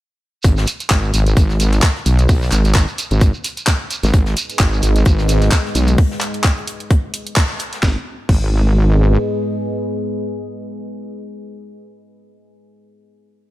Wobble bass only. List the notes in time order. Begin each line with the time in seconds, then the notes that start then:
0.44 G#1
0.91 G#1
1.14 G#1
1.37 G#1
2.06 B1
2.29 B1
2.52 G#1
3.11 G#1
4.03 G#1
4.14 G#1
4.60 G#1
4.83 G#1
5.06 G#1
5.75 B1
7.83 G#1
8.29 G#1